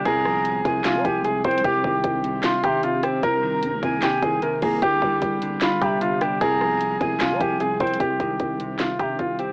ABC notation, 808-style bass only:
X:1
M:4/4
L:1/16
Q:1/4=151
K:Cm
V:1 name="808-style bass" clef=bass
C,,6 C,,3 G, C,,4 C,,2 | C,,2 C,,2 C,,6 C,4 z2 | C,,4 G,, C,, C,,2 z2 C,,2 z2 C,,2 | C,,2 C,,2 C,,4 z2 C,6 |
C,,6 C,,3 G, C,,4 C,,2 | C,,2 C,,2 C,,6 C,2 C,,4 |]